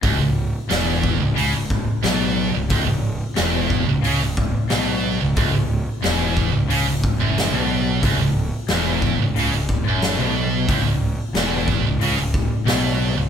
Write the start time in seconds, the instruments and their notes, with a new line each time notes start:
0.02 picked electric bass C#1, overdriven electric guitar C#2, kick, open hi-hat
0.19 picked electric bass C#1, overdriven electric guitar C#2
0.69 picked electric bass E1, overdriven electric guitar E2, snare, open hi-hat
1.03 kick
1.20 picked electric bass C#1, overdriven electric guitar C#2
1.35 picked electric bass C#2, overdriven electric guitar C#3, open hi-hat
1.53 picked electric bass C#1, overdriven electric guitar C#2
1.70 kick
2.03 picked electric bass B1, overdriven electric guitar B2, snare, open hi-hat
2.52 picked electric bass C#1, overdriven electric guitar C#2
2.69 picked electric bass C#1, overdriven electric guitar C#2, kick, open hi-hat
2.87 picked electric bass C#1, overdriven electric guitar C#2
3.35 picked electric bass E1, overdriven electric guitar E2, snare, open hi-hat
3.70 kick
3.86 picked electric bass C#1, overdriven electric guitar C#2
4.02 picked electric bass C#2, overdriven electric guitar C#3, open hi-hat
4.18 overdriven electric guitar C#2
4.23 picked electric bass C#1
4.37 kick
4.69 picked electric bass B1, overdriven electric guitar B2, snare, open hi-hat
5.20 picked electric bass C#1, overdriven electric guitar C#2
5.36 picked electric bass C#1, overdriven electric guitar C#2, kick, open hi-hat
5.52 picked electric bass C#1, overdriven electric guitar C#2
6.02 picked electric bass E1, overdriven electric guitar E2, snare, open hi-hat
6.37 kick
6.52 picked electric bass C#1, overdriven electric guitar C#2
6.69 picked electric bass C#2, overdriven electric guitar C#3, open hi-hat
6.87 picked electric bass C#1, overdriven electric guitar C#2
7.04 kick
7.19 picked electric bass F#1, overdriven electric guitar F#2
7.38 snare, open hi-hat
7.52 picked electric bass B1, overdriven electric guitar B2
8.01 picked electric bass C#1, overdriven electric guitar C#2, kick, open hi-hat
8.19 picked electric bass C#1, overdriven electric guitar C#2
8.68 picked electric bass E1, overdriven electric guitar E2, snare, open hi-hat
9.02 kick
9.19 picked electric bass C#1, overdriven electric guitar C#2
9.35 picked electric bass C#2, overdriven electric guitar C#3, open hi-hat
9.39 distorted electric guitar C#3
9.52 picked electric bass C#1, overdriven electric guitar C#2
9.69 kick
9.84 picked electric bass F#1, overdriven electric guitar F#2
9.88 distorted electric guitar F#2
10.02 snare, open hi-hat
10.18 picked electric bass B1, overdriven electric guitar B2
10.68 picked electric bass C#1, overdriven electric guitar C#2, kick, open hi-hat
10.84 picked electric bass C#1, overdriven electric guitar C#2
11.34 picked electric bass E1, overdriven electric guitar E2, snare, open hi-hat
11.68 kick
11.83 picked electric bass C#1, overdriven electric guitar C#2
12.00 picked electric bass C#2, overdriven electric guitar C#3, open hi-hat
12.17 picked electric bass C#1, overdriven electric guitar C#2
12.34 kick
12.65 picked electric bass B1, overdriven electric guitar B2, snare, open hi-hat
13.15 picked electric bass C#1, overdriven electric guitar C#2